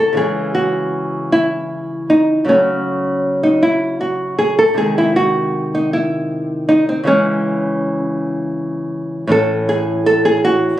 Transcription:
0.00 0.10 C#3 medium
0.00 0.11 E3 medium
0.00 0.12 G#3 medium
0.00 0.17 A4 loud
0.13 2.42 C#3 medium
0.13 2.43 E3 medium
0.13 2.44 G#3 soft
0.17 0.54 G#4 loud
0.55 1.29 F#4 medium
1.32 2.07 E4 medium
2.10 2.47 D#4 medium
2.45 4.71 C#3 medium
2.45 4.72 F#3 medium
2.45 4.73 A3 medium
2.49 3.40 C#4 medium
3.43 3.63 D#4 medium
3.63 3.99 E4 medium
4.01 4.37 F#4 medium
4.39 4.58 G#4 medium
4.59 4.77 A4 medium
4.74 7.02 C3 medium
4.74 7.02 D#3 soft
4.74 7.03 G#3 medium
4.74 4.97 G#4 medium
4.98 5.16 E4 medium
5.16 5.72 F#4 medium
5.75 5.93 D#4 medium
5.93 6.66 E4 medium
6.69 6.88 D#4 medium
6.89 7.07 C4 medium
7.04 9.26 C#3 medium
7.04 9.27 E3 medium
7.04 9.27 G#3 medium
7.04 7.97 C#4 medium
9.27 10.74 A2 medium
9.27 10.75 E3 medium
9.27 10.76 C#4 medium
9.32 9.67 A4 loud
9.69 10.05 G#4 loud
10.06 10.25 A4 loud
10.25 10.43 G#4 loud
10.45 10.80 F#4 loud

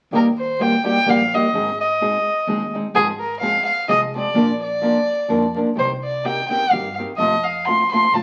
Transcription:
0.11 0.73 D#2 medium
0.11 0.27 D#3 medium
0.11 0.28 G3 medium
0.11 0.28 A#3 medium
0.11 0.28 D#4 soft
0.11 0.28 G4 medium
0.15 0.26 A#4 medium
0.38 0.63 C5 medium
0.59 0.74 G3 soft
0.59 0.75 A#3 soft
0.59 0.75 D#4 medium
0.59 0.75 G4 soft
0.59 0.86 G5 medium
0.83 0.97 G3 soft
0.83 0.97 A#3 soft
0.83 0.97 D#4 soft
0.83 0.98 G4 medium
0.83 1.10 G5 medium
1.06 1.37 A#1 medium
1.06 1.22 G3 soft
1.06 1.22 A#3 soft
1.06 1.22 D#4 soft
1.06 1.22 G4 medium
1.06 1.36 F5 medium
1.33 1.45 G3 soft
1.33 1.46 A#3 soft
1.33 1.46 D#4 soft
1.33 1.46 G4 soft
1.33 1.80 D#5 medium
1.53 2.15 G#1 medium
1.53 1.69 G#2 soft
1.53 1.69 D#3 soft
1.53 1.69 G#3 soft
1.53 1.70 C4 medium
1.53 1.70 D#4 medium
1.53 1.70 G#4 medium
1.80 2.70 D#5 medium
2.01 2.16 G#3 soft
2.01 2.16 C4 soft
2.01 2.16 D#4 soft
2.01 2.16 G#4 medium
2.47 2.78 D#2 medium
2.47 2.63 G#3 soft
2.47 2.63 C4 medium
2.47 2.63 D#4 soft
2.47 2.64 G#4 medium
2.74 2.86 G#3 soft
2.74 2.87 C4 soft
2.74 2.87 D#4 medium
2.74 2.87 G#4 soft
2.94 3.55 G#1 medium
2.94 3.10 G#2 soft
2.94 3.10 D#3 soft
2.94 3.10 F3 medium
2.94 3.10 G#3 medium
2.94 3.10 C4 medium
2.94 3.06 G#4 medium
2.94 3.11 G#4 medium
3.19 3.39 A#4 medium
3.40 3.56 F3 medium
3.40 3.57 G#3 soft
3.40 3.57 C4 medium
3.40 3.57 G#4 medium
3.40 3.64 F5 medium
3.65 3.86 F5 medium
3.88 4.19 C2 medium
3.88 4.03 F3 soft
3.88 4.03 G#3 soft
3.88 4.04 C4 soft
3.88 4.04 G#4 medium
3.88 4.00 D#5 medium
4.14 4.26 F3 soft
4.14 4.27 G#3 soft
4.14 4.27 C4 soft
4.14 4.28 G#4 soft
4.14 4.58 D5 medium
4.34 4.96 A#1 medium
4.34 4.50 A#2 soft
4.34 4.50 F3 medium
4.34 4.50 A#3 soft
4.34 4.50 D4 medium
4.34 4.51 A#4 soft
4.63 5.52 D5 medium
4.81 4.97 F3 soft
4.81 4.97 A#3 soft
4.81 4.98 D4 soft
4.81 4.98 A#4 medium
5.28 5.61 F2 medium
5.28 5.44 F3 soft
5.28 5.44 A#3 soft
5.28 5.45 D4 medium
5.28 5.45 A#4 soft
5.55 5.68 F3 soft
5.55 5.68 A#3 soft
5.55 5.69 D4 soft
5.55 5.69 A#4 soft
5.75 6.38 C2 medium
5.75 5.92 C3 soft
5.75 5.92 D#3 soft
5.75 5.92 C4 soft
5.75 5.92 D#4 soft
5.75 5.92 G4 medium
5.75 5.90 C5 medium
6.04 6.27 D5 medium
6.24 6.39 D#3 soft
6.24 6.39 C4 soft
6.24 6.40 D#4 medium
6.24 6.40 G4 medium
6.24 6.48 G5 medium
6.49 6.63 D#3 soft
6.49 6.63 C4 soft
6.49 6.63 D#4 soft
6.49 6.64 G4 medium
6.49 6.72 G5 medium
6.71 7.02 G2 medium
6.71 6.87 D#3 soft
6.71 6.87 C4 soft
6.71 6.87 D#4 soft
6.71 6.88 G4 soft
6.71 6.96 F5 medium
6.98 7.11 D#3 soft
6.98 7.11 C4 soft
6.98 7.11 D#4 soft
6.98 7.11 G4 soft
7.17 7.79 F2 medium
7.17 7.34 F2 soft
7.17 7.34 C3 soft
7.17 7.34 F3 soft
7.17 7.34 A3 soft
7.17 7.34 C4 medium
7.17 7.35 F4 medium
7.17 7.45 D#5 medium
7.43 7.67 F5 medium
7.65 7.81 F3 soft
7.65 7.82 A3 soft
7.65 7.82 C4 soft
7.65 7.82 F4 medium
7.65 7.91 C6 medium
7.92 8.05 F3 soft
7.92 8.05 A3 soft
7.92 8.05 C4 medium
7.92 8.06 F4 medium
7.92 8.15 C6 medium
8.12 8.23 B1 medium
8.12 8.23 F3 soft
8.12 8.23 A3 soft
8.12 8.23 C4 medium
8.12 8.23 F4 soft
8.12 8.23 A5 medium

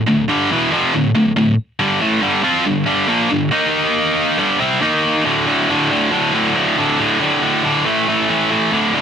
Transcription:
0.08 0.25 D2 medium
0.08 0.25 A2 medium
0.29 0.50 G2 medium
0.29 0.50 D3 medium
0.29 0.50 G3 loud
0.52 0.72 E2 loud
0.52 0.72 B2 loud
0.52 0.72 E3 loud
0.72 0.93 F2 medium
0.72 0.93 C3 loud
0.72 0.93 F3 loud
0.94 1.11 D2 medium
0.94 1.11 A2 medium
1.15 1.32 D2 medium
1.15 1.32 A2 medium
1.36 1.53 D2 medium
1.36 1.54 A2 medium
1.79 2.00 G2 loud
1.79 2.00 D3 loud
1.79 2.01 G3 loud
2.01 2.21 A2 loud
2.01 2.22 E3 loud
2.01 2.22 A3 loud
2.22 2.43 G2 loud
2.22 2.43 D3 loud
2.22 2.43 G3 loud
2.43 2.65 F3 medium
2.43 2.65 C4 medium
2.43 2.65 F4 loud
2.66 2.83 G2 medium
2.66 2.83 D3 medium
2.86 3.07 G2 medium
2.86 3.08 D3 loud
2.86 3.08 G3 loud
3.08 3.29 A#2 loud
3.08 3.29 F3 loud
3.08 3.30 A#3 loud
3.30 3.48 G2 medium
3.30 3.48 D3 medium
3.51 4.37 D#3 loud
3.51 4.37 A#3 loud
3.51 4.38 D#4 loud
4.37 4.59 G2 loud
4.37 4.59 D3 loud
4.37 4.59 G3 loud
4.60 4.81 C3 medium
4.60 4.81 G3 medium
4.60 4.81 C4 medium
4.81 5.24 D#3 medium
4.81 5.24 A#3 medium
4.81 5.24 D#4 medium
5.24 5.45 D2 loud
5.24 5.46 A2 loud
5.24 5.46 D3 loud
5.46 5.68 D2 medium
5.46 5.68 A2 medium
5.46 5.69 D3 loud
5.69 5.90 D2 medium
5.69 5.90 A2 medium
5.69 5.91 D3 loud
5.91 6.10 D2 medium
5.91 6.10 A2 medium
5.91 6.11 D3 loud
6.11 6.32 D2 loud
6.11 6.33 A2 loud
6.11 6.33 D3 loud
6.33 6.54 D2 medium
6.33 6.55 A2 medium
6.33 6.56 D3 medium
6.55 6.75 D2 medium
6.55 6.77 A2 loud
6.55 6.77 D3 medium
6.77 6.97 D2 medium
6.77 6.98 A2 medium
6.77 6.98 D3 loud
6.98 7.19 D2 loud
6.98 7.20 A2 loud
6.98 7.20 D3 loud
7.20 7.40 D2 medium
7.20 7.40 A2 medium
7.20 7.41 D3 medium
7.41 7.62 D2 medium
7.41 7.63 A2 medium
7.41 7.64 D3 loud
7.63 7.83 D2 medium
7.63 7.84 A2 medium
7.63 7.84 D3 medium
7.85 8.06 A2 loud
7.85 8.07 E3 medium
7.85 8.08 A3 loud
8.07 8.27 A2 medium
8.07 8.27 E3 medium
8.07 8.29 A3 loud
8.29 8.49 A2 medium
8.29 8.50 E3 medium
8.29 8.51 A3 loud
8.50 8.70 A2 medium
8.50 8.71 E3 medium
8.50 8.72 A3 loud
8.72 8.93 D2 loud
8.72 8.93 A2 loud
8.72 8.94 D3 loud
8.93 9.02 D2 medium
8.93 9.02 A2 medium
8.93 9.02 D3 medium

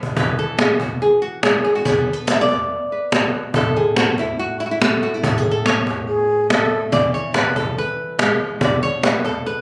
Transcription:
0.03 cajon bass medium
0.17 1.83 E3 medium
0.17 0.38 B4 medium
0.17 cajon bass medium
0.39 0.59 A4 medium
0.59 0.80 G#4 medium
0.59 cajon slap loud
0.80 1.01 F#4 medium
0.80 cajon bass medium
1.02 1.21 G#4 medium
1.22 1.42 F#4 medium
1.43 1.83 G#3 medium
1.43 1.63 G#4 medium
1.43 cajon slap loud
1.65 1.75 G#4 medium
1.65 cajon slap soft
1.75 1.85 F#4 medium
1.85 3.58 B3 medium
1.85 2.13 G#4 medium
1.85 cajon bass loud
2.00 2.27 A4 medium
2.13 2.70 B4 medium
2.27 2.33 D5 loud
2.27 cajon slap loud
2.33 2.41 E5 medium
2.41 3.54 D5 loud
2.49 cajon bass medium
2.49 cajon slap soft
2.92 3.58 B4 soft
3.12 3.53 F#4 medium
3.12 cajon slap loud
3.34 cajon slap soft
3.54 5.23 A2 medium
3.54 4.19 A4 medium
3.54 cajon bass medium
3.76 3.97 G#4 medium
3.76 cajon slap soft
3.96 4.18 F#4 medium
3.96 cajon slap loud
4.18 4.39 E4 medium
4.18 cajon bass medium
4.18 cajon slap soft
4.39 4.60 F#4 medium
4.60 4.66 E4 medium
4.66 4.71 F#4 medium
4.71 4.81 E4 medium
4.81 5.21 A3 medium
4.81 5.02 F#4 medium
4.81 cajon slap loud
5.03 5.14 F#4 medium
5.03 cajon slap soft
5.14 5.24 E4 medium
5.24 6.93 A2 medium
5.24 5.38 F#4 medium
5.24 cajon bass loud
5.38 5.94 G#4 medium
5.51 5.66 A4 medium
5.66 6.92 C#5 medium
5.66 cajon slap loud
5.87 cajon bass medium
5.87 cajon slap soft
6.08 6.47 G#4 medium
6.50 6.90 A3 medium
6.50 6.80 A4 loud
6.50 cajon slap medium
6.92 8.59 E3 medium
6.92 7.13 D5 loud
6.92 cajon bass medium
7.14 7.35 C#5 medium
7.34 7.56 B4 medium
7.34 cajon slap loud
7.56 7.77 A4 medium
7.56 cajon bass medium
7.78 8.41 B4 medium
8.19 8.58 G#3 medium
8.19 cajon slap loud
8.40 cajon slap soft
8.61 9.61 B2 medium
8.61 8.82 D5 medium
8.61 cajon bass loud
8.83 9.04 C#5 loud
9.03 9.25 B4 medium
9.03 cajon slap loud
9.25 9.46 A4 medium
9.25 cajon bass medium
9.25 cajon slap soft
9.46 9.61 B4 medium

